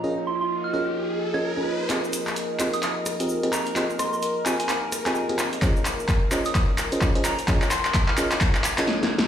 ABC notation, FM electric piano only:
X:1
M:4/4
L:1/16
Q:"Swing 16ths" 1/4=129
K:Fm
V:1 name="FM electric piano"
[DFABe] z4 z [DFABe] z4 [DFABe] z [DFABe] z2 | [CFGAe] z4 z [CFGAe] z4 [CFGAe]2 [CFGAe] z2 | [CFGAe] z4 z [CFGAe] z4 [CFGAe]2 [CFGAe] z2 | [DFAce] z4 z [DFAce] z4 [DFAce]2 [DFAce] z2 |
[DFABe] z4 z [DFABe] z4 [DFABe] z4 |]